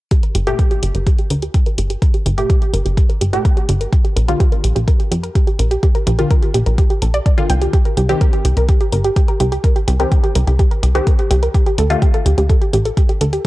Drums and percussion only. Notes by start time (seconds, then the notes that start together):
0.11 kick, closed hi-hat
0.23 closed hi-hat
0.35 closed hi-hat
0.47 closed hi-hat
0.59 kick, closed hi-hat
0.71 closed hi-hat
0.83 closed hi-hat
0.95 closed hi-hat
1.07 kick, closed hi-hat
1.19 closed hi-hat
1.30 closed hi-hat
1.42 closed hi-hat
1.54 kick, closed hi-hat
1.66 closed hi-hat
1.78 closed hi-hat
1.90 closed hi-hat
2.02 kick, closed hi-hat
2.14 closed hi-hat
2.26 closed hi-hat
2.38 closed hi-hat
2.50 kick, closed hi-hat
2.62 closed hi-hat
2.74 closed hi-hat
2.86 closed hi-hat
2.97 kick, closed hi-hat
3.10 closed hi-hat
3.21 closed hi-hat
3.33 closed hi-hat
3.45 kick, closed hi-hat
3.57 closed hi-hat
3.69 closed hi-hat
3.81 closed hi-hat
3.92 kick, closed hi-hat
4.05 closed hi-hat
4.17 closed hi-hat
4.28 closed hi-hat
4.40 kick, closed hi-hat
4.52 closed hi-hat
4.64 closed hi-hat
4.76 closed hi-hat
4.88 kick, closed hi-hat
5.00 closed hi-hat
5.12 closed hi-hat
5.24 closed hi-hat
5.35 kick, closed hi-hat
5.47 closed hi-hat
5.59 closed hi-hat
5.71 closed hi-hat
5.83 kick, closed hi-hat
5.95 closed hi-hat
6.07 closed hi-hat
6.19 closed hi-hat
6.30 kick, closed hi-hat
6.42 closed hi-hat
6.54 closed hi-hat
6.66 closed hi-hat
6.78 kick, closed hi-hat
6.90 closed hi-hat
7.02 closed hi-hat
7.14 closed hi-hat
7.26 kick, closed hi-hat
7.38 closed hi-hat
7.50 closed hi-hat
7.61 closed hi-hat
7.73 kick, closed hi-hat
7.85 closed hi-hat
7.97 closed hi-hat
8.09 closed hi-hat
8.21 kick, closed hi-hat
8.33 closed hi-hat
8.45 closed hi-hat
8.57 closed hi-hat
8.69 kick, closed hi-hat
8.81 closed hi-hat
8.92 closed hi-hat
9.04 closed hi-hat
9.16 kick, closed hi-hat
9.28 closed hi-hat
9.40 closed hi-hat
9.52 closed hi-hat
9.64 kick, closed hi-hat
9.76 closed hi-hat
9.88 closed hi-hat
10.00 closed hi-hat
10.12 kick, closed hi-hat
10.24 closed hi-hat
10.35 closed hi-hat
10.47 closed hi-hat
10.59 kick, closed hi-hat
10.71 closed hi-hat
10.83 closed hi-hat
10.95 closed hi-hat
11.07 kick, closed hi-hat
11.19 closed hi-hat
11.31 closed hi-hat
11.43 closed hi-hat
11.54 kick, closed hi-hat
11.66 closed hi-hat
11.78 closed hi-hat
11.90 closed hi-hat
12.02 kick, closed hi-hat
12.14 closed hi-hat
12.26 closed hi-hat
12.38 closed hi-hat
12.50 kick, closed hi-hat
12.62 closed hi-hat
12.73 closed hi-hat
12.85 closed hi-hat
12.97 kick, closed hi-hat
13.09 closed hi-hat
13.21 closed hi-hat
13.33 closed hi-hat